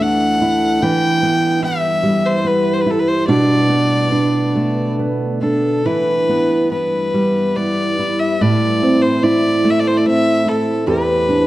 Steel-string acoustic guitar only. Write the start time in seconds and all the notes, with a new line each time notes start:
Already playing: D2 A3 E4
0.01 D4
0.42 E4
0.83 E3 E4
1.23 B3
1.63 E4
2.03 G3
2.45 B3
2.86 E4
3.28 B2 D4
3.69 B3
4.12 D4
4.55 A3
4.99 B3
5.43 D4
5.85 E3 E4
6.29 B3
6.72 E4
7.14 G3
7.57 B3
7.99 E4
8.41 A2 E4
8.83 C4
9.24 E4
9.64 A3
10.06 C4
10.46 E4
10.87 E2 G4
11.29 D4